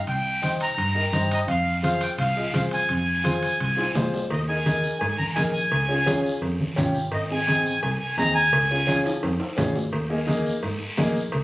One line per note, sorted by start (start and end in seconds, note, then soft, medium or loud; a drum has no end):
0.07 0.64 C2 medium
0.07 0.41 G5 loud
0.07 high conga soft
0.07 high timbale medium
0.07 long guiro medium
0.42 0.61 D#4 medium
0.42 0.61 G4 medium
0.42 0.62 C5 medium
0.42 0.51 G5 medium
0.42 high conga medium
0.42 high timbale medium
0.42 short guiro medium
0.60 1.34 A#5 loud
0.60 high timbale medium
0.60 short guiro medium
0.77 1.06 G2 medium
0.77 high conga soft
0.77 high timbale medium
0.77 long guiro medium
0.95 1.02 D#4 medium
0.95 1.02 G4 medium
0.95 1.02 A#4 medium
1.12 1.41 G2 medium
1.12 1.38 D#4 medium
1.12 1.38 G4 medium
1.12 1.39 C5 medium
1.12 high conga medium
1.12 high timbale medium
1.12 short guiro medium
1.30 1.40 D#5 medium
1.30 high timbale medium
1.30 short guiro medium
1.48 2.05 F2 medium
1.48 1.83 F5 medium
1.48 high conga soft
1.48 high timbale medium
1.48 long guiro medium
1.83 2.02 F4 medium
1.83 2.02 G#4 medium
1.83 2.02 C5 medium
1.83 2.03 F5 medium
1.83 high conga medium
1.83 high timbale medium
1.83 short guiro medium
2.01 2.10 G5 medium
2.01 high timbale medium
2.01 short guiro medium
2.18 2.47 C2 medium
2.18 2.52 F5 medium
2.18 high conga soft
2.18 high timbale medium
2.18 long guiro medium
2.37 2.43 F4 medium
2.37 2.43 G#4 medium
2.37 2.43 D#5 medium
2.53 2.82 C2 medium
2.53 2.79 F4 medium
2.53 2.79 G#4 medium
2.53 2.79 C5 medium
2.53 2.63 F5 medium
2.53 high conga medium
2.53 high timbale medium
2.53 short guiro medium
2.71 3.92 G#5 medium
2.71 high timbale medium
2.71 short guiro medium
2.89 3.46 F2 medium
2.89 high conga soft
2.89 high timbale medium
2.89 long guiro medium
3.24 3.43 F4 medium
3.24 3.43 G#4 medium
3.24 3.43 C5 medium
3.24 high conga medium
3.24 high timbale medium
3.24 short guiro medium
3.43 high timbale medium
3.43 short guiro medium
3.60 3.89 C2 medium
3.60 high conga soft
3.60 high timbale medium
3.60 long guiro medium
3.76 3.83 F4 medium
3.76 3.84 G#4 medium
3.76 3.84 C5 medium
3.76 high timbale medium
3.95 4.24 C2 medium
3.95 4.20 F4 medium
3.95 4.20 G#4 medium
3.95 4.20 C5 loud
3.95 high conga medium
3.95 low timbale medium
3.95 short guiro medium
4.13 low timbale medium
4.13 short guiro medium
4.30 4.87 D#2 medium
4.30 4.40 D#5 medium
4.30 cowbell loud
4.30 long guiro medium
4.48 4.55 D#4 medium
4.48 4.55 G#4 medium
4.48 4.55 A#4 medium
4.48 4.98 G#5 medium
4.66 4.91 D#4 medium
4.66 4.91 G#4 medium
4.66 4.91 A#4 medium
4.66 cowbell medium
4.66 high conga medium
4.66 short guiro medium
4.83 short guiro medium
4.99 5.15 G#2 loud
4.99 5.17 G#5 loud
4.99 cowbell loud
4.99 long guiro medium
5.18 5.26 A#5 loud
5.18 high conga medium
5.35 5.65 A#1 medium
5.35 5.55 D#4 medium
5.35 5.55 G#4 medium
5.35 5.55 A#4 medium
5.35 5.43 G#5 medium
5.35 cowbell medium
5.35 high conga medium
5.35 short guiro medium
5.52 6.20 G#5 loud
5.52 short guiro medium
5.71 6.28 C#2 medium
5.71 cowbell loud
5.71 long guiro medium
5.89 5.95 C#4 medium
5.89 5.95 F4 medium
5.89 5.95 G#4 medium
6.06 6.31 C#4 loud
6.06 6.31 F4 medium
6.06 6.31 G#4 loud
6.06 cowbell medium
6.06 high conga medium
6.06 short guiro medium
6.25 short guiro medium
6.42 6.56 F2 loud
6.42 cowbell medium
6.42 long guiro medium
6.60 high conga medium
6.76 7.06 G#1 loud
6.76 6.95 C#4 medium
6.76 6.96 F4 medium
6.76 6.96 G4 loud
6.76 cowbell medium
6.76 high conga medium
6.76 low conga medium
6.76 short guiro medium
6.95 short guiro medium
7.12 7.68 G#1 medium
7.12 7.21 D#5 medium
7.12 cowbell loud
7.12 long guiro medium
7.30 7.36 C4 medium
7.30 7.36 D#4 medium
7.30 7.37 G#4 medium
7.30 7.81 G#5 loud
7.47 7.72 C4 medium
7.47 7.72 D#4 medium
7.47 7.72 G#4 medium
7.47 cowbell medium
7.47 high conga medium
7.47 short guiro medium
7.66 short guiro medium
7.82 7.97 C2 loud
7.82 7.90 G#5 loud
7.82 cowbell loud
7.82 long guiro medium
8.00 8.16 G#5 medium
8.17 8.46 D#2 medium
8.17 8.36 C4 medium
8.17 8.36 D#4 medium
8.17 8.37 G#4 medium
8.17 8.34 A#5 loud
8.17 cowbell medium
8.17 high conga medium
8.17 short guiro medium
8.35 9.01 G#5 loud
8.35 short guiro medium
8.52 9.09 C#2 loud
8.52 cowbell loud
8.52 long guiro medium
8.71 8.77 C#4 medium
8.71 8.77 F4 medium
8.71 8.77 G#4 medium
8.87 9.12 C#4 loud
8.87 9.12 F4 medium
8.87 9.12 G#4 loud
8.87 cowbell medium
8.87 high conga medium
8.87 short guiro medium
9.05 high timbale medium
9.05 short guiro medium
9.23 9.37 F2 loud
9.23 cowbell medium
9.23 high timbale medium
9.23 long guiro medium
9.40 high timbale medium
9.57 9.86 G#1 medium
9.57 9.76 C#4 medium
9.57 9.76 F4 medium
9.57 9.76 G#4 loud
9.57 cowbell medium
9.57 high conga medium
9.57 low conga medium
9.57 low timbale loud
9.57 short guiro medium
9.75 low timbale medium
9.75 short guiro medium
9.93 10.49 D#2 medium
9.93 cowbell loud
9.93 long guiro medium
10.10 10.16 A#3 medium
10.10 10.16 D#4 medium
10.10 10.17 G#4 medium
10.26 10.52 A#3 medium
10.26 10.52 D#4 medium
10.26 10.52 G#4 medium
10.26 cowbell medium
10.26 high conga medium
10.26 short guiro medium
10.46 short guiro medium
10.63 10.77 G#2 loud
10.63 cowbell medium
10.63 long guiro medium
10.97 11.26 A#1 loud
10.97 11.16 A#3 medium
10.97 11.17 D#4 medium
10.97 11.17 G#4 medium
10.97 cowbell medium
10.97 high conga medium
10.97 low timbale medium
10.97 short guiro medium
11.16 short guiro medium
11.32 11.44 C#2 medium
11.32 cowbell loud
11.32 long guiro medium